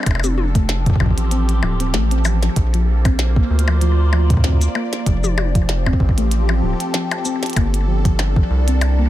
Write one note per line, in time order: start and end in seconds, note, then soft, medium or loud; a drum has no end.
0.00 1.07 D4 medium
0.00 3.44 A4 medium
0.00 percussion blips soft
0.06 0.93 F1 loud
0.06 2.56 F3 medium
0.06 kick medium
0.06 closed hi-hat medium
0.06 percussion blips soft
0.11 percussion blips soft
0.15 percussion blips soft
0.20 percussion blips soft
0.24 0.31 C4 loud
0.24 closed hi-hat soft
0.24 high tom medium
0.24 shaker medium
0.30 3.57 G4 medium
0.38 high tom medium
0.55 0.66 A3 loud
0.55 kick loud
0.55 closed hi-hat medium
0.67 3.57 C4 medium
0.67 snare loud
0.67 closed hi-hat medium
0.86 0.94 F3 medium
0.86 kick loud
0.86 closed hi-hat soft
0.90 kick medium
0.96 kick medium
1.00 1.62 A1 medium
1.00 1.14 F3 loud
1.00 kick medium
1.00 percussion blips medium
1.06 kick medium
1.11 kick soft
1.18 closed hi-hat medium
1.31 1.45 C4 medium
1.31 closed hi-hat medium
1.49 closed hi-hat soft
1.63 1.95 D1 medium
1.63 1.72 F3 medium
1.63 percussion blips medium
1.80 1.84 C4 medium
1.80 closed hi-hat medium
1.94 2.49 A1 loud
1.94 2.03 A3 loud
1.94 snare loud
1.94 closed hi-hat medium
2.11 2.19 C4 loud
2.11 closed hi-hat soft
2.25 2.34 F3 loud
2.25 percussion blips medium
2.25 shaker medium
2.43 2.50 F3 medium
2.43 snare medium
2.43 closed hi-hat medium
2.56 3.43 A#1 loud
2.56 5.06 A#3 medium
2.56 kick medium
2.56 closed hi-hat medium
2.74 2.85 F3 loud
2.74 closed hi-hat soft
2.94 5.85 C5 medium
3.01 3.12 C4 loud
3.01 5.94 F4 medium
3.01 kick loud
3.01 closed hi-hat medium
3.01 percussion blips soft
3.19 snare loud
3.19 closed hi-hat medium
3.36 3.47 A#3 loud
3.36 kick loud
3.42 6.07 D5 medium
3.50 4.68 D2 medium
3.59 closed hi-hat medium
3.68 3.75 F3 medium
3.68 percussion blips medium
3.81 3.95 F3 loud
3.81 closed hi-hat medium
4.13 4.26 F3 loud
4.13 percussion blips medium
4.30 kick loud
4.30 closed hi-hat medium
4.34 kick medium
4.37 kick medium
4.40 kick medium
4.44 4.53 C4 loud
4.44 kick soft
4.44 snare loud
4.44 closed hi-hat medium
4.48 kick soft
4.53 kick soft
4.57 kick soft
4.61 closed hi-hat soft
4.61 shaker medium
4.75 4.89 A#3 loud
4.75 percussion blips medium
4.93 snare medium
4.93 closed hi-hat soft
5.06 5.93 F1 loud
5.06 7.56 F3 medium
5.06 5.16 F3 medium
5.06 kick medium
5.06 closed hi-hat medium
5.24 5.35 F3 loud
5.24 high tom medium
5.24 shaker medium
5.34 8.57 C4 medium
5.34 high tom medium
5.34 percussion blips medium
5.55 5.66 F3 loud
5.55 kick loud
5.55 closed hi-hat soft
5.69 snare loud
5.69 closed hi-hat medium
5.76 8.53 G4 medium
5.86 5.94 C4 loud
5.86 kick soft
5.86 percussion blips medium
5.93 kick medium
6.00 6.62 A1 medium
6.00 kick medium
6.09 kick medium
6.18 6.29 A3 loud
6.18 9.09 A4 medium
6.18 closed hi-hat medium
6.31 closed hi-hat medium
6.49 6.56 F3 medium
6.49 percussion blips medium
6.63 6.74 D1 medium
6.63 6.76 F3 loud
6.80 closed hi-hat medium
6.94 7.08 F3 loud
6.94 snare loud
6.94 closed hi-hat medium
7.11 closed hi-hat soft
7.11 percussion blips medium
7.25 7.34 C4 loud
7.25 shaker medium
7.43 snare medium
7.43 closed hi-hat soft
7.46 closed hi-hat soft
7.50 closed hi-hat soft
7.53 8.43 G1 loud
7.53 9.09 G3 medium
7.53 7.70 A#3 medium
7.53 kick medium
7.53 closed hi-hat soft
7.56 closed hi-hat medium
7.56 percussion blips medium
7.74 9.09 D4 medium
7.74 closed hi-hat soft
7.88 7.97 F3 medium
8.05 8.16 F3 loud
8.05 kick loud
8.05 closed hi-hat medium
8.19 snare loud
8.19 closed hi-hat medium
8.19 percussion blips medium
8.36 8.47 F3 loud
8.36 kick loud
8.50 9.09 C2 loud
8.50 9.09 A#4 medium
8.68 8.75 C4 loud
8.68 closed hi-hat medium
8.81 closed hi-hat medium
8.81 percussion blips medium
8.99 9.09 A#3 loud